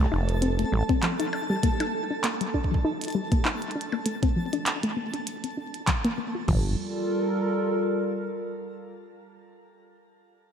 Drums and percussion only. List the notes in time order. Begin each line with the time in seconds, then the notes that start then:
0.29 closed hi-hat
0.42 closed hi-hat
0.59 closed hi-hat
0.89 kick, closed hi-hat
1.03 clap, closed hi-hat
1.20 closed hi-hat
1.33 percussion blips
1.63 kick, closed hi-hat
1.80 closed hi-hat, percussion blips
2.24 clap, closed hi-hat
2.41 closed hi-hat
2.54 kick
2.64 kick
2.74 kick
3.01 closed hi-hat
3.04 closed hi-hat
3.08 closed hi-hat
3.10 closed hi-hat
3.32 kick, closed hi-hat
3.45 clap
3.62 closed hi-hat
3.71 closed hi-hat
3.81 closed hi-hat
3.92 percussion blips
4.06 closed hi-hat
4.23 kick, closed hi-hat
4.53 closed hi-hat
4.66 clap, closed hi-hat
4.83 closed hi-hat
5.14 closed hi-hat
5.27 closed hi-hat
5.44 closed hi-hat
5.74 closed hi-hat
5.87 kick, clap, closed hi-hat
6.05 closed hi-hat
6.48 kick, floor tom, crash